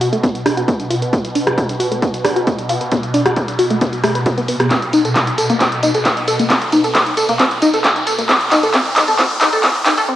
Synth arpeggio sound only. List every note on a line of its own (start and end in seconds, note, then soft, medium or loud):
0.01 0.08 F#4 loud
0.12 0.17 A3 loud
0.23 0.28 B3 medium
0.46 0.53 D4 loud
0.57 0.62 F#4 loud
0.68 0.73 B3 medium
0.90 0.95 F4 medium
1.02 1.06 B4 medium
1.13 1.18 B3 medium
1.35 1.42 D4 loud
1.47 1.51 F#4 loud
1.57 1.60 B4 medium
1.80 1.87 F#4 loud
1.92 1.96 A3 loud
2.02 2.07 B3 medium
2.25 2.32 D4 loud
2.36 2.41 F#4 loud
2.47 2.52 B3 medium
2.69 2.74 F4 loud
2.81 2.86 B4 medium
2.92 2.97 B3 medium
3.14 3.21 D4 loud
3.26 3.30 F#4 loud
3.37 3.40 B4 medium
3.59 3.66 F#4 loud
3.71 3.75 A3 loud
3.81 3.86 B3 medium
4.04 4.11 A3 loud
4.15 4.20 B4 loud
4.26 4.31 F#4 medium
4.38 4.40 B3 loud
4.49 4.56 B3 medium
4.60 4.67 B3 medium
4.71 4.76 C4 medium
4.93 5.01 D#4 medium
5.05 5.09 A4 medium
5.16 5.19 C5 medium
5.38 5.45 A4 loud
5.50 5.54 A#3 loud
5.61 5.65 C4 medium
5.83 5.90 D#4 loud
5.95 5.99 A4 loud
6.05 6.08 C5 medium
6.28 6.35 A4 loud
6.39 6.44 A#3 medium
6.50 6.55 C4 medium
6.73 6.80 D#4 medium
6.84 6.89 A4 loud
6.95 6.98 C5 medium
7.17 7.24 A4 loud
7.29 7.33 A#3 loud
7.40 7.44 C4 medium
7.62 7.69 D#4 loud
7.74 7.78 A4 loud
7.85 7.87 C5 medium
8.07 8.14 A4 medium
8.19 8.23 A#3 medium
8.29 8.34 C4 medium
8.52 8.59 D#4 loud
8.63 8.68 A4 loud
8.74 8.79 C4 medium
8.96 9.04 D#4 loud
9.08 9.13 A4 loud
9.19 9.24 C4 medium
9.41 9.48 D#4 loud
9.53 9.57 A4 loud
9.64 9.68 C4 medium
9.86 9.93 D#4 loud
9.98 10.02 A4 loud
10.09 10.13 C4 medium